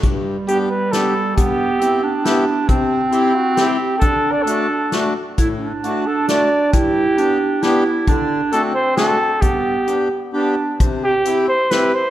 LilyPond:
<<
  \new Staff \with { instrumentName = "Flugelhorn" } { \time 3/4 \key g \major \tempo 4 = 134 r4 g'8 b'8 a'4 | g'2~ g'8 r8 | r4 e'8 fis'8 g'16 g'8. | a'8. d''16 a'4. r8 |
r4 fis'8 a'8 d''4 | g'2~ g'8 r8 | r4 a'8 c''8 a'4 | g'2 r4 |
\key c \major r8 g'4 c''8 b'8 c''8 | }
  \new Staff \with { instrumentName = "Accordion" } { \time 3/4 \key g \major g,4 <b d' g'>8 r8 <b d' g'>8 r8 | g,4 <b e' g'>8 r8 <b e' g'>8 r8 | c4 <c' e' g'>8 r8 <c' e' g'>8 r8 | d4 <a d' fis'>8 r8 <a d' fis'>8 r8 |
a,4 <a d' fis'>8 r8 <a d' fis'>8 r8 | g,4 <b d' g'>8 r8 <b d' g'>8 r8 | d4 <a d' fis'>8 r8 <a d' fis'>8 r8 | g,4 <b d' g'>8 r8 <b d' g'>8 r8 |
\key c \major c4 <c' e' g'>8 r8 <c' e' g'>8 r8 | }
  \new Staff \with { instrumentName = "Clarinet" } { \time 3/4 \key g \major g2. | b4 c'8 d'4. | c'2. | d'2~ d'8 r8 |
e'8 d'2~ d'8 | e'4 d'4 e'4 | d'4 c'2 | b4. r8 d'4 |
\key c \major r2. | }
  \new DrumStaff \with { instrumentName = "Drums" } \drummode { \time 3/4 <hh bd>4 hh4 <hh sn>4 | <hh bd>4 hh4 <hh sn>4 | <hh bd>4 hh4 <hh sn>4 | <hh bd>4 hh4 <hh sn>4 |
<hh bd>4 hh4 <hh sn>4 | <hh bd>4 hh4 <hh sn>4 | <hh bd>4 hh4 <hh sn>4 | <hh bd>4 hh4 r4 |
<hh bd>4 hh4 <hh sn>4 | }
>>